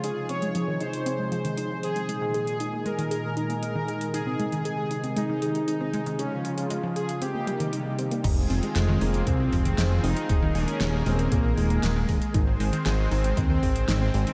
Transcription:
Already playing: F3 G#3 G#4
0.03 C3 D#4 G#4, closed hi-hat
0.29 C4 C#5, closed hi-hat
0.42 G#3, closed hi-hat
0.55 F3, closed hi-hat
0.68 D#3
0.81 D#4 C5, closed hi-hat
0.93 closed hi-hat
1.06 C4, closed hi-hat
1.19 G#3
1.32 F3 C5, closed hi-hat
1.45 D#3, closed hi-hat
1.57 D#4, closed hi-hat
1.83 C4 G#4, closed hi-hat
1.96 G#3, closed hi-hat
2.09 A#2 D#3 G#3 D#4, closed hi-hat
2.22 D#3
2.34 G#4, closed hi-hat
2.47 closed hi-hat
2.60 D#4, closed hi-hat
2.73 A#3
2.86 G#3 A#4, closed hi-hat
2.98 D#3, closed hi-hat
3.11 G#4, closed hi-hat
3.37 D#4, closed hi-hat
3.50 A#3, closed hi-hat
3.63 G#3 A#4, closed hi-hat
3.75 D#3
3.88 G#4, closed hi-hat
4.01 closed hi-hat
4.14 C3 D#4 G#4, closed hi-hat
4.27 C4
4.40 G#3 G#4, closed hi-hat
4.52 D#3, closed hi-hat
4.65 G#4, closed hi-hat
4.91 D#4, closed hi-hat
5.04 C4, closed hi-hat
5.17 G#3 D#4, closed hi-hat
5.29 D#3
5.42 G#4, closed hi-hat
5.55 closed hi-hat
5.68 D#4, closed hi-hat
5.81 C4
5.94 G#3, closed hi-hat
6.06 D#3, closed hi-hat
6.19 C#3 F3 C#4 F4 G#4, closed hi-hat
6.45 F4, closed hi-hat
6.58 C#4, closed hi-hat
6.70 G#3, closed hi-hat
6.83 F3
6.96 G#4, closed hi-hat
7.09 closed hi-hat
7.22 C3 G3 A#3 C4 D#4 G4, closed hi-hat
7.35 A#3
7.47 G3, closed hi-hat
7.60 D#3, closed hi-hat
7.73 D#4, closed hi-hat
7.99 C4, closed hi-hat
8.11 A#3, closed hi-hat
8.24 F1 D#3 G#3 C4 D#4 F4 G#4, kick, closed hi-hat, crash
8.50 F1 C4, open hi-hat
8.63 G#3, closed hi-hat
8.76 F1 F3 G#3, snare, closed hi-hat
8.89 D#3
9.01 F1 A#3 D#4, open hi-hat
9.14 closed hi-hat
9.27 C2 C4, kick, closed hi-hat
9.40 G#3
9.52 F1 F3, kick, open hi-hat
9.65 D#3, closed hi-hat
9.78 F1 D#4, snare, closed hi-hat
10.03 F1 C4 D#4, open hi-hat
10.17 G#3, closed hi-hat
10.29 D#1 G#3 A#3 A#4, kick, closed hi-hat
10.42 D#3
10.55 D#1 C#4 G#4, open hi-hat
10.68 closed hi-hat
10.81 D#1 D#4, snare, closed hi-hat
10.94 A#3
11.06 D#1 G#3 C4, open hi-hat
11.19 D#3, closed hi-hat
11.32 A#1 A#3 G#4, kick, closed hi-hat
11.57 D#1 G#3 D#4, open hi-hat
11.70 A#3, closed hi-hat
11.83 D#1 G#3, snare, closed hi-hat
11.96 D#3
12.09 D#1 G#4, kick, open hi-hat
12.22 closed hi-hat
12.34 G#1 D#3 C4 D#4 C5, kick, closed hi-hat
12.47 C4
12.60 G#1 G#3, open hi-hat
12.73 D#3, closed hi-hat
12.85 G#1 G#3 G#4, snare, closed hi-hat
13.11 G#1 C4 D#4, open hi-hat
13.24 C4, closed hi-hat
13.37 D#2 G#3, kick, closed hi-hat
13.50 D#3
13.63 G#1 G#4, kick, open hi-hat
13.76 closed hi-hat
13.88 G#1 D#4, snare, closed hi-hat
14.01 C4
14.14 G#1 G#3, open hi-hat
14.27 D#3, closed hi-hat

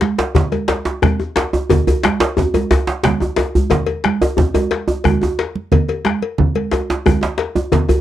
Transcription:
0.01 djembe slap, high conga
0.18 cowbell, djembe slap
0.35 bombo low, djembe slap, high conga, djembe bass, low conga
0.52 bombo rim, cowbell, djembe tone, high conga
0.68 cowbell, djembe slap
0.85 djembe slap
1.02 bombo rim, bombo low, cowbell, high conga, djembe bass, low conga
1.20 djembe tone, high conga
1.36 cowbell, djembe slap
1.53 djembe tone
1.70 bombo low, cowbell, djembe tone, djembe bass, low conga
1.87 cowbell, djembe tone, djembe bass
2.03 bombo rim, djembe slap, high conga
2.20 cowbell, djembe slap, high conga
2.37 djembe tone, djembe bass, low conga
2.54 cowbell, djembe slap, djembe tone, high conga
2.71 cowbell, djembe slap, high conga, djembe bass
2.87 bombo rim, djembe slap, high conga
3.03 bombo rim, bombo low, djembe slap, high conga, djembe bass, low conga
3.20 bombo rim, djembe tone, high conga
3.36 bombo rim, cowbell, djembe slap, djembe tone
3.55 high conga, djembe bass
3.70 bombo low, cowbell, djembe slap, djembe bass, low conga
3.87 cowbell, djembe tone
4.04 bombo rim, djembe slap, high conga
4.22 cowbell, djembe tone
4.37 bombo low, high conga, djembe tone, djembe bass, low conga
4.54 bombo rim, cowbell, djembe tone, high conga
4.71 cowbell, djembe slap
4.88 djembe tone
5.04 bombo rim, bombo low, cowbell, high conga, djembe tone, low conga
5.21 djembe tone, high conga
5.39 cowbell, djembe slap
5.55 high conga
5.72 bombo low, cowbell, djembe slap, low conga, djembe bass
5.88 cowbell, djembe tone
6.05 bombo rim, djembe slap, high conga
6.22 cowbell, high conga
6.38 bombo low, high conga, low conga
6.55 bombo rim, cowbell, high conga
6.71 cowbell, djembe slap, djembe tone
6.90 djembe slap
7.06 bombo rim, cowbell, high conga, djembe bass, low conga
7.21 djembe slap, djembe tone
7.38 cowbell, djembe slap
7.55 djembe tone, high conga
7.72 bombo low, cowbell, djembe slap, djembe bass, low conga
7.88 cowbell, djembe tone, djembe bass

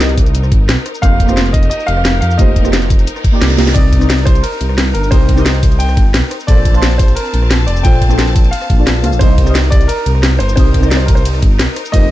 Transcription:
Already playing: C2 C4 D#4 G4 A#4 D#5
0.01 snare, closed hi-hat, shaker
0.09 closed hi-hat
0.17 kick, open hi-hat
0.26 closed hi-hat, shaker
0.35 C2, closed hi-hat, shaker
0.43 cross-stick, shaker
0.52 G1, kick, closed hi-hat
0.69 C2, snare, closed hi-hat, shaker
0.86 cross-stick, open hi-hat
0.95 shaker
1.01 F1 A#3 D#4 F4 G4 C5 F5, kick, closed hi-hat, shaker
1.20 kick, closed hi-hat
1.26 A#3 D#4 F4, cross-stick, shaker
1.30 G4 C5
1.37 snare, closed hi-hat, shaker
1.46 closed hi-hat
1.53 D#5, kick, open hi-hat
1.63 closed hi-hat, shaker
1.70 D#5, closed hi-hat, shaker
1.80 shaker
1.87 F1 F5, closed hi-hat
1.97 cross-stick
2.05 snare, closed hi-hat, shaker
2.21 F2 F5, open hi-hat
2.31 shaker
2.38 F1 A#3 D#4 F4 G4 C5 D#5, kick, closed hi-hat, shaker
2.56 kick, closed hi-hat
2.62 A#3 D#4 F4, cross-stick, shaker
2.66 G4 C5
2.73 snare, closed hi-hat, shaker
2.82 closed hi-hat, shaker
2.90 kick, open hi-hat
2.99 closed hi-hat, shaker
3.07 closed hi-hat, reverse cymbal, shaker
3.16 cross-stick, shaker
3.24 kick, closed hi-hat
3.32 A#3 D#4 F4 G4 D5
3.42 C2, snare, closed hi-hat, shaker
3.50 snare, closed hi-hat, shaker
3.57 C2 A#3 D#4 F4 G4 D#5, snare, open hi-hat
3.67 snare, closed hi-hat, shaker
3.74 C2 C4 D#4 G4 A#4 D5 D#5, kick, closed hi-hat, ride, shaker
3.93 kick, closed hi-hat, ride
3.98 C4 D#4 G4, cross-stick, shaker
4.03 A#4 D#5
4.10 snare, closed hi-hat, ride, shaker
4.18 closed hi-hat
4.26 C5, kick, open hi-hat, ride
4.35 closed hi-hat, shaker
4.43 A#4, closed hi-hat, ride, shaker
4.52 shaker
4.61 C2, closed hi-hat, ride
4.69 cross-stick
4.78 snare, closed hi-hat, ride, shaker
4.94 G1 A#4, open hi-hat, ride
5.03 shaker
5.11 C2 C4 D#4 G4 A#4 C5 D#5, kick, closed hi-hat, ride, shaker
5.29 kick, closed hi-hat, ride
5.35 C4 D#4 G4, cross-stick, shaker
5.39 A#4 D#5
5.46 snare, closed hi-hat, ride, shaker
5.55 closed hi-hat
5.63 kick, open hi-hat, ride
5.72 closed hi-hat, shaker
5.79 C2 G5, closed hi-hat, ride, shaker
5.89 cross-stick, shaker
5.97 G1, kick, closed hi-hat, ride
6.14 C2, snare, closed hi-hat, ride, shaker
6.31 cross-stick, open hi-hat, ride
6.40 shaker
6.47 A#1 A#3 C4 D4 F4 A4 C5 D5 A5, kick, closed hi-hat, ride, shaker
6.65 kick, closed hi-hat, ride
6.71 A#3 D4 F4, cross-stick, shaker
6.76 C5 A5
6.83 snare, closed hi-hat, ride, shaker
6.91 closed hi-hat
6.98 C5, kick, open hi-hat, ride
7.08 closed hi-hat, shaker
7.15 A#4, closed hi-hat, ride, shaker
7.25 shaker
7.33 A#1, closed hi-hat, ride
7.42 cross-stick
7.51 snare, closed hi-hat, ride, shaker
7.66 F1 D5, open hi-hat, ride
7.76 shaker
7.83 A#1 A#3 D4 F4 A4 C5 G5, kick, closed hi-hat, ride, shaker
8.02 kick, closed hi-hat, ride
8.08 A#3 D4 F4, cross-stick, shaker
8.12 A4 C5
8.19 snare, closed hi-hat, ride, shaker
8.28 closed hi-hat
8.36 kick, open hi-hat, ride
8.44 closed hi-hat, shaker
8.51 F5, closed hi-hat, ride, shaker
8.62 cross-stick, shaker
8.70 A#1, kick, closed hi-hat, ride
8.77 A#3 D4 F4 A4 D5
8.87 snare, closed hi-hat, ride, shaker
9.03 D2 A#3 D4 F4 A4 F5, cross-stick, open hi-hat, ride
9.13 A#1, shaker
9.19 C2 C4 D#4 G4 A#4 C5 D#5, kick, closed hi-hat, ride, shaker
9.38 kick, closed hi-hat, ride
9.44 C4 D#4 G4, cross-stick, shaker
9.48 A#4 D#5
9.55 snare, closed hi-hat, ride, shaker
9.64 closed hi-hat
9.70 D5, kick, open hi-hat, ride
9.81 closed hi-hat, shaker
9.88 A#4, closed hi-hat, ride, shaker
9.98 shaker
10.06 C2, closed hi-hat, ride
10.15 cross-stick
10.23 snare, closed hi-hat, ride, shaker
10.39 G1 C5, open hi-hat, ride
10.49 shaker
10.56 C2 C4 D#4 G4 A#4 C5 D#5, kick, closed hi-hat, ride, shaker
10.74 kick, closed hi-hat, ride
10.80 C4 D#4 G4, cross-stick, shaker
10.85 A#4 D5 D#5
10.91 snare, closed hi-hat, ride, shaker
10.97 C5, closed hi-hat
11.06 A#4, kick, open hi-hat, ride
11.15 C5, closed hi-hat, shaker
11.25 C2, closed hi-hat, ride, shaker
11.34 cross-stick, shaker
11.42 G1, kick, closed hi-hat, ride
11.59 C2, snare, closed hi-hat, ride, shaker
11.76 cross-stick, open hi-hat, ride
11.85 shaker
11.92 F1 A#3 D#4 F4 G4 C5 D#5, kick, closed hi-hat, ride, shaker

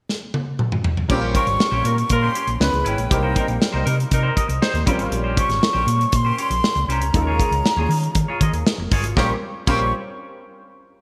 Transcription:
0.09 snare
0.34 high tom
0.59 mid tom
0.72 mid tom
0.84 floor tom
0.97 floor tom
1.09 A#1 C#3 G3 C4 C#4 F4 G4 A#4, muted clean electric guitar stroke, kick, crash
1.22 C#4 G4 C5
1.35 G3 C#4 F4 G4 A#4 C5 C#6, kick, closed hi-hat
1.47 G#1, muted clean electric guitar stroke, closed hi-hat
1.59 muted clean electric guitar stroke, snare
1.71 A#1 G3 C#4 F4 G4 C5 C#5
1.84 A#2 G3 F4 A#4, muted clean electric guitar stroke, closed hi-hat
1.98 muted clean electric guitar stroke, closed hi-hat
2.10 A#2 G3 F4 A#4 C6, muted clean electric guitar stroke, kick, closed hi-hat
2.23 C#4 G4 C5
2.35 C#4 G4 C#5, closed hi-hat
2.47 A#1, muted clean electric guitar stroke, closed hi-hat
2.60 C#2 G#3 B3 C#4 E4 B4 B5, snare
2.72 C#2, muted clean electric guitar stroke, closed hi-hat
2.84 G#1 C#4 E4 B4 G5, closed hi-hat
2.98 A#1, muted clean electric guitar stroke, closed hi-hat
3.10 C2 D#3 G3 A#3 C4 D#4 G4 A#4, muted clean electric guitar stroke, kick, closed hi-hat
3.23 D#4 A#4 C5
3.35 G3 D#4 A#4 C5, kick, closed hi-hat
3.48 A#1, muted clean electric guitar stroke, closed hi-hat
3.60 muted clean electric guitar stroke, snare
3.73 C2 G3 D#4 A#4 C5
3.86 C3 G3 D#4 A#4, muted clean electric guitar stroke, closed hi-hat
3.98 muted clean electric guitar stroke, closed hi-hat
4.11 C3 G3 D#4 A#4, muted clean electric guitar stroke, kick, closed hi-hat
4.23 D#4 A#4 C5
4.36 D#4 A#4 D#5, kick, closed hi-hat
4.48 C2, muted clean electric guitar stroke, closed hi-hat
4.62 G3 D#4 C5, snare
4.74 D#2, muted clean electric guitar stroke, closed hi-hat
4.86 A#1 G3 C4 C#4 F4 G4 A#4 C5, kick, closed hi-hat
4.99 G#1, muted clean electric guitar stroke, closed hi-hat
5.11 A#1, muted clean electric guitar stroke, closed hi-hat
5.24 C#4 G4 C5
5.36 C#4 G4 C5 C#6, kick, closed hi-hat
5.49 G#1, muted clean electric guitar stroke, snare, closed hi-hat
5.61 muted clean electric guitar stroke, snare
5.73 A#1 C#4 G4 C5
5.86 A#2, muted clean electric guitar stroke, closed hi-hat
5.99 muted clean electric guitar stroke, closed hi-hat
6.12 A#2 C6, muted clean electric guitar stroke, kick, closed hi-hat
6.25 C#4 G4 C5
6.38 C#4 G4 C#5 C6, closed hi-hat
6.50 A#1, muted clean electric guitar stroke, closed hi-hat
6.64 snare
6.76 C#2, muted clean electric guitar stroke, closed hi-hat
6.88 C2 C#4 G4 C5 A#5, closed hi-hat
7.01 C#2, muted clean electric guitar stroke, closed hi-hat
7.13 D#2 G#3 C#4 D#4 F4 A4, muted clean electric guitar stroke, kick, closed hi-hat
7.22 A#4
7.27 F4 G#4 C#5
7.39 F4 G#4 C#5, kick, closed hi-hat
7.51 C#2, muted clean electric guitar stroke, closed hi-hat
7.65 muted clean electric guitar stroke, snare
7.76 D#2 F4 G#4 C#5
7.89 D#3, muted clean electric guitar stroke, open hi-hat
8.03 muted clean electric guitar stroke, closed hi-hat
8.15 D#3, muted clean electric guitar stroke, kick, closed hi-hat
8.28 F4 G#4 C#5
8.41 D#3 F4 G#4 D#5, kick, closed hi-hat
8.52 D#2, muted clean electric guitar stroke, closed hi-hat
8.67 snare
8.78 F1, muted clean electric guitar stroke
8.91 G1 F4 G#4 C#5, kick, open hi-hat
9.04 G#1, muted clean electric guitar stroke, closed hi-hat
9.16 A#1 C#3 G3 C4 C#4 F4 G4 A#4 C5 C#6, kick, snare
9.67 A#1 C#3 G3 C4 C#4 F4 G4 A#4 C5 C#6, kick, crash

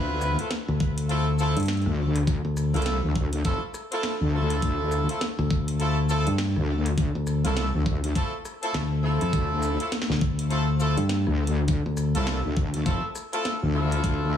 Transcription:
Already playing: D2 B3 C4 E4 F4 B4
0.21 cross-stick, shaker
0.31 cross-stick
0.39 A3 C4 E4 F4 A4, cross-stick, closed hi-hat
0.51 snare, closed hi-hat
0.68 D2
0.80 kick
0.98 closed hi-hat
1.09 A3 C4 E4 F4 A4, closed hi-hat
1.39 A3 C4 E4 F4 A4, shaker
1.57 G2, closed hi-hat
1.60 closed hi-hat
1.63 closed hi-hat
1.66 snare, closed hi-hat
1.68 closed hi-hat
1.73 closed hi-hat
1.77 closed hi-hat
1.82 closed hi-hat
1.86 D2, cross-stick
2.16 cross-stick, closed hi-hat
2.18 cross-stick
2.23 cross-stick
2.27 kick, cross-stick, closed hi-hat
2.33 cross-stick
2.37 cross-stick
2.45 D2
2.57 cross-stick, shaker
2.74 C2 A3 C4 E4 F4 A4, closed hi-hat
2.76 closed hi-hat
2.82 snare, closed hi-hat
2.86 closed hi-hat
3.03 D2
3.16 kick
3.33 closed hi-hat
3.45 F1 A3 C4 E4 F4 A4, kick, closed hi-hat
3.74 cross-stick, shaker
3.92 A3 C4 E4 F4 A4, closed hi-hat
4.03 snare, closed hi-hat
4.21 D2
4.33 A3 C4 E4 F4 A4
4.50 cross-stick, closed hi-hat
4.62 D2, kick, closed hi-hat
4.92 cross-stick, shaker
5.09 A3 C4 E4 F4 A4, closed hi-hat
5.21 snare, closed hi-hat
5.39 D2
5.50 kick
5.68 closed hi-hat
5.80 A3 C4 E4 F4 A4, closed hi-hat
6.09 A3 C4 E4 F4 A4, shaker
6.27 G2, closed hi-hat
6.38 snare, closed hi-hat
6.56 D2, cross-stick
6.86 cross-stick, closed hi-hat
6.98 kick, closed hi-hat
7.15 D2
7.27 cross-stick, shaker
7.44 C2 A3 C4 E4 F4 A4, closed hi-hat
7.57 snare, closed hi-hat
7.74 D2
7.86 kick
8.04 closed hi-hat
8.15 A3 C4 E4 F4 A4, kick, closed hi-hat
8.45 cross-stick, shaker
8.62 A3 C4 E4 F4 A4, closed hi-hat
8.74 D2, snare, closed hi-hat
9.03 A3 C4 E4 F4 A4
9.21 F2, cross-stick, closed hi-hat
9.33 D2, kick, closed hi-hat
9.63 cross-stick, shaker
9.80 A3 C4 E4 F4 A4, closed hi-hat
9.92 snare, closed hi-hat
10.02 snare
10.10 D2, snare
10.21 kick
10.39 closed hi-hat
10.50 A3 C4 E4 F4 A4, closed hi-hat
10.80 A3 C4 E4 F4 A4, shaker
10.97 G2, closed hi-hat
11.09 snare, closed hi-hat
11.27 D2, cross-stick
11.47 closed hi-hat
11.56 cross-stick
11.68 kick, closed hi-hat
11.86 D2
11.97 cross-stick, shaker
12.15 C2 A3 C4 E4 F4 A4, closed hi-hat
12.27 snare, closed hi-hat
12.45 D2
12.57 kick
12.74 closed hi-hat
12.86 F1 A3 C4 E4 F4 A4, kick, closed hi-hat
13.15 cross-stick, shaker
13.33 A3 C4 E4 F4 A4, closed hi-hat
13.45 snare, closed hi-hat
13.62 D2
13.74 A3 C4 E4 F4 A4
13.92 cross-stick, closed hi-hat
14.00 D2, kick, cross-stick, closed hi-hat
14.10 cross-stick
14.33 cross-stick

